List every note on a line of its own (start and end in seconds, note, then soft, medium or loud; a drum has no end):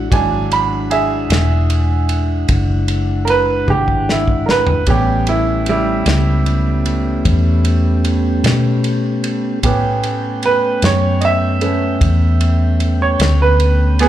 0.00 0.10 F#5 medium
0.10 1.27 G#1 medium
0.10 1.26 F#3 soft
0.10 1.26 G#3 soft
0.10 4.84 G#3 medium
0.10 1.27 D4 medium
0.10 4.84 D4 medium
0.10 4.84 E4 medium
0.10 4.84 F#5 medium
0.10 0.51 G#5 medium
0.10 kick loud
0.10 ride medium
0.52 0.91 B5 medium
0.52 ride medium
0.91 2.45 G#4 medium
0.91 2.46 E5 medium
0.91 ride medium
1.30 2.46 E1 medium
1.30 snare medium
1.30 ride medium
1.70 ride medium
2.09 ride medium
2.49 3.65 F#1 medium
2.49 kick loud
2.49 ride medium
2.88 ride medium
3.25 3.30 A#4 medium
3.25 ride medium
3.30 3.68 B4 medium
3.68 4.84 G#1 medium
3.68 4.08 G4 medium
3.68 high tom medium
3.88 kick medium
4.09 4.48 E4 medium
4.09 snare medium
4.28 kick medium
4.46 4.50 A#4 medium
4.46 snare medium
4.50 4.88 B4 medium
4.67 floor tom medium
4.87 6.02 A1 medium
4.87 5.68 G3 soft
4.87 9.59 A3 medium
4.87 9.59 B3 medium
4.87 6.03 B3 soft
4.87 9.59 C#4 medium
4.87 6.03 C#4 soft
4.87 9.59 G4 medium
4.87 5.27 G4 medium
4.87 kick loud
4.87 ride medium
5.27 5.66 E4 medium
5.27 ride medium
5.66 8.02 G3 medium
5.66 8.02 E4 medium
5.66 ride medium
6.06 7.21 C#2 medium
6.06 snare loud
6.06 ride medium
6.46 ride medium
6.86 ride medium
7.25 8.41 E2 medium
7.25 kick loud
7.25 ride medium
7.65 ride medium
8.05 ride medium
8.44 9.59 B2 medium
8.44 snare loud
8.44 ride medium
8.84 ride medium
9.24 ride medium
9.63 10.79 A2 medium
9.63 14.09 A3 medium
9.63 14.09 B3 medium
9.63 11.60 B3 soft
9.63 14.09 C#4 medium
9.63 11.61 C#4 soft
9.63 14.09 G4 soft
9.63 14.09 G5 medium
9.63 kick loud
9.63 ride medium
10.03 ride medium
10.43 10.82 B4 medium
10.43 ride medium
10.82 11.98 F#2 medium
10.82 11.22 C#5 medium
10.82 snare loud
10.82 ride medium
11.21 11.25 D#5 medium
11.21 12.98 E5 medium
11.21 ride medium
11.61 11.97 A3 soft
11.61 11.97 B3 soft
11.61 11.97 C#4 soft
11.61 ride medium
12.01 13.16 E2 medium
12.01 kick loud
12.01 ride medium
12.41 ride medium
12.80 ride medium
13.02 13.39 C#5 medium
13.20 14.09 D2 medium
13.20 snare loud
13.20 ride medium
13.42 13.98 B4 medium
13.60 ride medium
13.99 14.09 B3 medium
13.99 14.09 G#4 medium
13.99 snare soft
13.99 ride medium